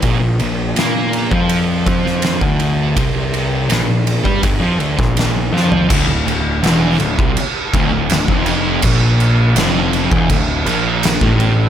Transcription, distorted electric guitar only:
\new Staff \with { instrumentName = "Distorted electric guitar" } { \clef bass \time 4/4 \key d \minor \tempo 4 = 82 bes,16 bes,16 bes,8 bes8. f8. f8. d8. | c4 bes,16 bes,8 g16 g,16 f16 d16 bes,8. f8 | d,16 d,16 d,8 e,8 d,16 c16 r8 d,16 d,16 d,16 f,8. | bes,4 f,8. e,16 d,8 bes,8. a,8. | }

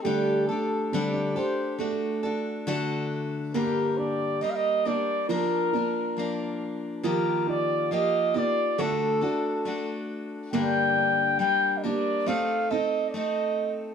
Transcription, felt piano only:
\new Staff \with { instrumentName = "Felt piano" } { \time 4/4 \key g \minor \tempo 4 = 69 <a g'>8 a8 c'16 d'16 g'8 a8 d'8 fis'4 | bes8 d'4 <bes d' g'>8 f8 <f bes d'>4. | f8 ees'4 <bes ees' g'>8 a8 <a d' fis'>4. | bes8 d'4 <bes d' g'>8 c'8 <c' ees' a'>4. | }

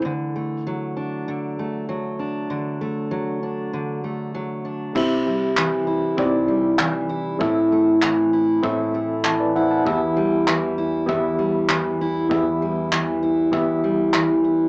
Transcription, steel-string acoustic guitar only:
\new Staff \with { instrumentName = "Steel-string acoustic guitar" } { \clef bass \time 4/4 \key e \minor \tempo 4 = 98 d8 a8 fis8 d'8 d8 a8 fis8 d'8 | d8 a8 fis8 d'8 d8 a8 fis8 d'8 | <c e'>8 g8 e8 e'8 c8 g8 e8 e'8 | <a, e'>8 a8 e8 e'8 a,8 a8 e8 e'8 |
<e, e'>8 g8 e8 e'8 e,8 g8 e8 e'8 | <e, e'>8 g8 e8 e'8 e,8 g8 e8 e'8 | }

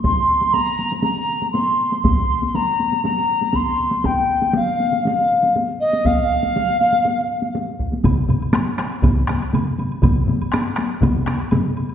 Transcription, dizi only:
\new Staff \with { instrumentName = "Dizi" } { \time 4/4 \tempo 4 = 120 c'''4 bes''4 bes''4 c'''4 | c'''4 bes''4 bes''4 c'''4 | g''4 f''4 f''4 r8 ees''8 | f''2. r4 |
r1 | r1 | }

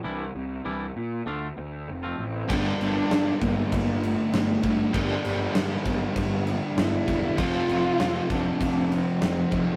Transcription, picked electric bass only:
\new Staff \with { instrumentName = "Picked electric bass" } { \clef bass \time 4/4 \key g \dorian \tempo 4 = 98 c,8 c,8 c,8 bes,8 d,8 d,8 f,,8 a,,8 | g,,8 g,,8 g,8 g,,8 g,,4 g,,8 g,,8 | g,,8 g,,8 g,8 g,,8 g,,4 g,,8 e,,8 | f,,8 f,,8 f,8 f,,8 f,,4 f,,8 f,,8 | }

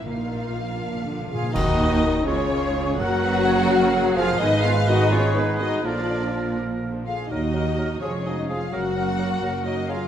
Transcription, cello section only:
\new Staff \with { instrumentName = "Cello section" } { \clef bass \time 6/8 \key ees \minor \tempo 4. = 83 bes,4. bes,8 d8 bes,8 | ees,4. des,4. | ges,2~ ges,8 f,8 | aes,2. |
bes,2~ bes,8 r8 | ees,4. f,4. | ges,4. ges,4. | }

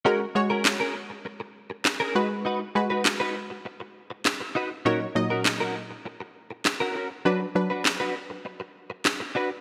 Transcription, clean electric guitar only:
\new Staff \with { instrumentName = "Clean electric guitar" } { \time 4/4 \key fis \major \tempo 4 = 100 <cis' gis' ais'>16 r8 <cis' gis' ais'>16 r16 <cis' gis' ais'>16 r4. r16 <cis' gis' ais'>16 <dis' fis' b'>16 r16 | <dis' fis' b'>16 r8 <dis' fis' b'>16 r16 <dis' fis' b'>16 r2 <dis' fis' b'>16 r16 | <cis' fis' ais'>16 r8 <cis' fis' ais'>16 r16 <cis' fis' ais'>16 r4. r16 <cis' fis' ais'>16 <cis' fis' ais'>16 r16 | <d' fis' b'>16 r8 <d' fis' b'>16 r16 <d' fis' b'>16 r2 <d' fis' b'>16 r16 | }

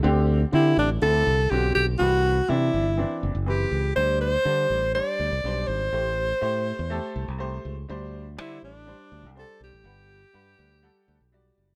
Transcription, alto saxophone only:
\new Staff \with { instrumentName = "Alto saxophone" } { \time 4/4 \key d \mixolydian \tempo 4 = 122 r4 e'8 d'8 a'4 g'8 g'8 | fis'4 e'4. r8 g'4 | c''8 c''4. d''4. c''8~ | c''2.~ c''8 r8 |
r4 e'8 d'4. a'8 g'8~ | g'2.~ g'8 r8 | }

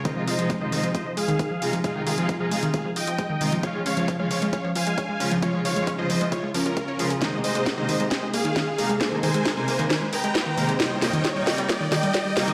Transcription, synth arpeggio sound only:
\new Staff \with { instrumentName = "Synth arpeggio sound" } { \clef bass \time 4/4 \key f \minor \tempo 4 = 134 ees16 f16 f'16 f16 aes16 ees16 ees16 f16 f'16 f16 aes16 ees16 ees16 f16 f'16 f16 | aes16 ees16 ees16 f16 f'16 f16 aes16 ees16 ees16 f16 f'16 f16 aes16 ees16 ees16 f16 | des''16 aes16 des'16 f16 f16 aes16 des''16 aes16 des'16 f16 f16 aes16 des''16 aes16 des'16 f16 | f16 aes16 des''16 aes16 des'16 f16 f16 aes16 des''16 aes16 f16 f'16 f''16 des''16 aes'16 aes'16 |
ees16 aes16 aes'16 aes16 bes16 ees16 ees16 aes16 aes'16 aes16 bes16 ees16 ees16 aes16 aes'16 aes16 | bes16 ees16 ees16 aes16 aes'16 aes16 bes16 ees16 ees16 aes16 aes'16 aes16 bes16 ees16 ees16 aes16 | g'16 g16 bes16 ees16 ees16 g16 g'16 g16 bes16 ees16 ees16 g16 g'16 g16 bes16 ees16 | }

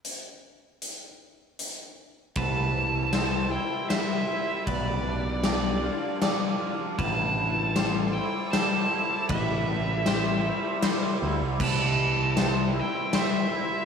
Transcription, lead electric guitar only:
\new Staff \with { instrumentName = "Lead electric guitar" } { \time 3/4 \key c \major \tempo 4 = 78 r2. | a''4. g''8 e''4 | d''2~ d''8 r8 | a''4. g''8 a''4 |
e''2 r4 | a''4. g''8 e''4 | }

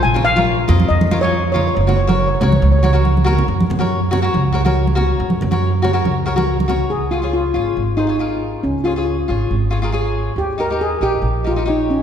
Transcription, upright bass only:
\new Staff \with { instrumentName = "Upright bass" } { \clef bass \time 4/4 \key ges \lydian \tempo 4 = 139 bes,,4. f,8 f,2 | ges,,4. des,8 des,2 | ges,8 ges,4. des,2 | ges,8 ges,4. des,2 |
des,4. aes,,8 aes,,2 | des,4. aes,,8 aes,,2 | ees,4. bes,,8 bes,,2 | }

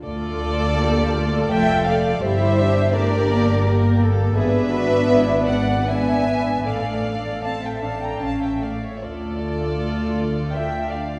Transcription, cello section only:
\new Staff \with { instrumentName = "Cello section" } { \time 3/4 \key d \minor \tempo 4 = 80 f'4 g'8 a'4. | g'2 bes'8 a'8 | gis'8 fis'8 e'8 d'8 b'4 | a'2~ a'8 r8 |
r4 f'4 d'4 | }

